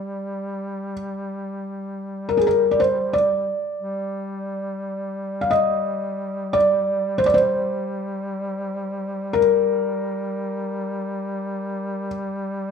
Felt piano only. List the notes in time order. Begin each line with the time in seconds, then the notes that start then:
Already playing: D5
2.29 A#4
2.37 G#4
2.47 A#4
2.71 D5
2.80 C5
3.13 D5
5.41 F5
5.51 D#5
6.53 D5
7.18 C5
7.26 D5
7.34 C5
9.33 A#4